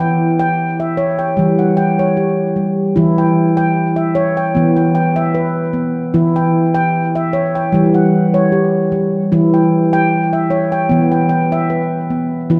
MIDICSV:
0, 0, Header, 1, 2, 480
1, 0, Start_track
1, 0, Tempo, 794702
1, 1791, Time_signature, 4, 2, 24, 8
1, 7608, End_track
2, 0, Start_track
2, 0, Title_t, "Handpan"
2, 0, Program_c, 0, 114
2, 0, Note_on_c, 0, 52, 78
2, 0, Note_on_c, 0, 64, 60
2, 0, Note_on_c, 0, 79, 50
2, 107, Note_off_c, 0, 64, 0
2, 231, Note_off_c, 0, 79, 0
2, 238, Note_on_c, 0, 79, 61
2, 479, Note_off_c, 0, 79, 0
2, 482, Note_on_c, 0, 76, 48
2, 588, Note_on_c, 0, 73, 58
2, 675, Note_off_c, 0, 52, 0
2, 717, Note_on_c, 0, 79, 46
2, 827, Note_on_c, 0, 55, 62
2, 829, Note_off_c, 0, 73, 0
2, 831, Note_off_c, 0, 76, 0
2, 839, Note_on_c, 0, 52, 73
2, 959, Note_off_c, 0, 79, 0
2, 959, Note_on_c, 0, 78, 45
2, 1068, Note_off_c, 0, 55, 0
2, 1069, Note_on_c, 0, 79, 52
2, 1203, Note_on_c, 0, 73, 57
2, 1309, Note_off_c, 0, 78, 0
2, 1310, Note_on_c, 0, 67, 49
2, 1440, Note_off_c, 0, 79, 0
2, 1442, Note_off_c, 0, 73, 0
2, 1548, Note_on_c, 0, 55, 51
2, 1640, Note_off_c, 0, 52, 0
2, 1681, Note_off_c, 0, 67, 0
2, 1786, Note_on_c, 0, 64, 68
2, 1789, Note_off_c, 0, 55, 0
2, 1794, Note_on_c, 0, 52, 85
2, 1922, Note_on_c, 0, 79, 50
2, 2029, Note_off_c, 0, 64, 0
2, 2149, Note_off_c, 0, 79, 0
2, 2156, Note_on_c, 0, 79, 61
2, 2393, Note_on_c, 0, 76, 48
2, 2399, Note_off_c, 0, 79, 0
2, 2507, Note_on_c, 0, 73, 62
2, 2597, Note_off_c, 0, 52, 0
2, 2639, Note_on_c, 0, 79, 48
2, 2747, Note_off_c, 0, 76, 0
2, 2747, Note_on_c, 0, 59, 61
2, 2749, Note_off_c, 0, 73, 0
2, 2758, Note_on_c, 0, 52, 77
2, 2871, Note_off_c, 0, 79, 0
2, 2878, Note_on_c, 0, 79, 46
2, 2982, Note_off_c, 0, 79, 0
2, 2989, Note_off_c, 0, 59, 0
2, 2989, Note_on_c, 0, 79, 52
2, 3116, Note_on_c, 0, 76, 57
2, 3229, Note_on_c, 0, 71, 55
2, 3359, Note_off_c, 0, 76, 0
2, 3361, Note_off_c, 0, 79, 0
2, 3462, Note_on_c, 0, 59, 58
2, 3560, Note_off_c, 0, 52, 0
2, 3600, Note_off_c, 0, 71, 0
2, 3707, Note_off_c, 0, 59, 0
2, 3708, Note_on_c, 0, 64, 68
2, 3711, Note_on_c, 0, 52, 83
2, 3841, Note_on_c, 0, 79, 51
2, 3950, Note_off_c, 0, 64, 0
2, 4067, Note_off_c, 0, 79, 0
2, 4074, Note_on_c, 0, 79, 63
2, 4318, Note_off_c, 0, 79, 0
2, 4321, Note_on_c, 0, 76, 52
2, 4428, Note_on_c, 0, 73, 60
2, 4516, Note_off_c, 0, 52, 0
2, 4562, Note_on_c, 0, 79, 51
2, 4666, Note_on_c, 0, 55, 70
2, 4670, Note_off_c, 0, 73, 0
2, 4671, Note_off_c, 0, 76, 0
2, 4677, Note_on_c, 0, 52, 79
2, 4798, Note_on_c, 0, 78, 46
2, 4802, Note_off_c, 0, 79, 0
2, 4909, Note_off_c, 0, 55, 0
2, 5038, Note_on_c, 0, 73, 59
2, 5146, Note_on_c, 0, 67, 53
2, 5150, Note_off_c, 0, 78, 0
2, 5280, Note_off_c, 0, 73, 0
2, 5388, Note_on_c, 0, 55, 58
2, 5479, Note_off_c, 0, 52, 0
2, 5520, Note_off_c, 0, 67, 0
2, 5629, Note_on_c, 0, 64, 60
2, 5630, Note_off_c, 0, 55, 0
2, 5632, Note_on_c, 0, 52, 82
2, 5760, Note_on_c, 0, 79, 48
2, 5870, Note_off_c, 0, 64, 0
2, 5991, Note_off_c, 0, 79, 0
2, 5998, Note_on_c, 0, 79, 64
2, 6238, Note_on_c, 0, 76, 51
2, 6240, Note_off_c, 0, 79, 0
2, 6344, Note_on_c, 0, 73, 56
2, 6437, Note_off_c, 0, 52, 0
2, 6475, Note_on_c, 0, 79, 51
2, 6580, Note_on_c, 0, 59, 68
2, 6588, Note_off_c, 0, 73, 0
2, 6590, Note_off_c, 0, 76, 0
2, 6592, Note_on_c, 0, 52, 74
2, 6707, Note_off_c, 0, 79, 0
2, 6714, Note_on_c, 0, 79, 47
2, 6814, Note_off_c, 0, 79, 0
2, 6821, Note_on_c, 0, 79, 51
2, 6826, Note_off_c, 0, 59, 0
2, 6959, Note_on_c, 0, 76, 56
2, 7066, Note_on_c, 0, 71, 51
2, 7197, Note_off_c, 0, 79, 0
2, 7201, Note_off_c, 0, 76, 0
2, 7311, Note_on_c, 0, 59, 54
2, 7396, Note_off_c, 0, 52, 0
2, 7439, Note_off_c, 0, 71, 0
2, 7550, Note_on_c, 0, 52, 80
2, 7551, Note_off_c, 0, 59, 0
2, 7554, Note_on_c, 0, 64, 67
2, 7608, Note_off_c, 0, 52, 0
2, 7608, Note_off_c, 0, 64, 0
2, 7608, End_track
0, 0, End_of_file